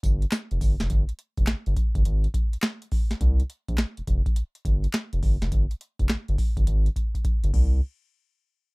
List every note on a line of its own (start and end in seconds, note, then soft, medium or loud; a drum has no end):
0.03 0.25 G1 loud
0.03 kick medium
0.03 closed hi-hat medium
0.03 tambourine medium
0.22 closed hi-hat medium
0.31 snare loud
0.31 clap medium
0.31 closed hi-hat medium
0.31 tambourine loud
0.51 0.59 F1 medium
0.51 closed hi-hat medium
0.61 0.75 G1 loud
0.61 kick medium
0.61 open hi-hat medium
0.61 tambourine medium
0.80 0.88 F1 loud
0.80 snare medium
0.80 closed hi-hat medium
0.90 1.04 G1 loud
0.90 kick medium
0.90 closed hi-hat medium
1.09 closed hi-hat medium
1.19 closed hi-hat medium
1.37 1.45 F1 medium
1.37 kick loud
1.37 closed hi-hat medium
1.47 1.56 G1 soft
1.47 snare loud
1.47 clap medium
1.47 closed hi-hat medium
1.66 1.74 G1 loud
1.66 closed hi-hat medium
1.77 kick loud
1.77 closed hi-hat medium
1.95 2.03 G1 medium
1.95 kick loud
1.95 closed hi-hat soft
2.05 2.27 G#1 medium
2.05 closed hi-hat medium
2.24 closed hi-hat medium
2.34 kick medium
2.34 closed hi-hat medium
2.53 closed hi-hat medium
2.62 snare loud
2.62 clap loud
2.62 closed hi-hat medium
2.82 closed hi-hat medium
2.92 kick loud
2.92 open hi-hat medium
3.11 snare medium
3.11 closed hi-hat medium
3.21 3.42 C2 loud
3.21 kick medium
3.21 closed hi-hat medium
3.40 closed hi-hat medium
3.50 closed hi-hat medium
3.68 3.76 A#1 medium
3.68 kick medium
3.68 closed hi-hat soft
3.77 snare loud
3.77 clap medium
3.77 closed hi-hat medium
3.97 4.02 F1 medium
3.97 closed hi-hat medium
4.07 4.22 F1 loud
4.07 kick medium
4.07 closed hi-hat medium
4.26 kick loud
4.26 closed hi-hat soft
4.36 closed hi-hat medium
4.55 closed hi-hat medium
4.65 4.87 G1 medium
4.65 kick medium
4.65 closed hi-hat medium
4.84 closed hi-hat medium
4.93 snare loud
4.93 clap loud
4.93 closed hi-hat medium
5.13 5.20 F1 medium
5.13 closed hi-hat medium
5.23 5.37 G1 loud
5.23 kick loud
5.23 open hi-hat medium
5.42 5.49 F1 loud
5.42 snare medium
5.42 closed hi-hat medium
5.52 5.66 G1 loud
5.52 kick medium
5.52 closed hi-hat medium
5.71 closed hi-hat medium
5.81 closed hi-hat medium
5.99 6.07 F1 medium
5.99 kick medium
5.99 closed hi-hat soft
6.09 6.17 G1 soft
6.09 snare loud
6.09 clap medium
6.09 closed hi-hat medium
6.28 6.36 G1 loud
6.28 closed hi-hat soft
6.38 kick medium
6.38 open hi-hat medium
6.57 6.64 G1 medium
6.57 kick loud
6.57 closed hi-hat soft
6.67 6.89 G#1 loud
6.67 kick medium
6.67 closed hi-hat medium
6.86 closed hi-hat medium
6.96 kick medium
6.96 closed hi-hat medium
7.15 kick medium
7.15 closed hi-hat medium
7.25 kick medium
7.25 closed hi-hat medium
7.44 7.51 G1 medium
7.44 closed hi-hat medium
7.54 7.81 C2 loud
7.54 kick loud
7.54 crash medium